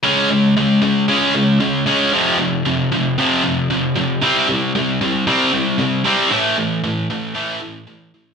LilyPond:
\new Staff \with { instrumentName = "Distorted electric guitar" } { \clef bass \time 4/4 \key cis \minor \tempo 4 = 115 <cis gis cis'>8 <cis gis>8 <cis gis>8 <cis gis>8 <cis gis cis'>8 <cis gis>8 <cis gis>8 <cis gis cis'>8 | <f, c f>8 <f, c>8 <f, c>8 <f, c>8 <f, c f>8 <f, c>8 <f, c>8 <f, c>8 | <c g c'>8 <c g>8 <c g>8 <c g>8 <c g c'>8 <c g>8 <c g>8 <c g c'>8 | <a, e a>8 <a, e>8 <a, e>8 <a, e>8 <a, e a>8 <a, e>8 <a, e>8 <a, e>8 | }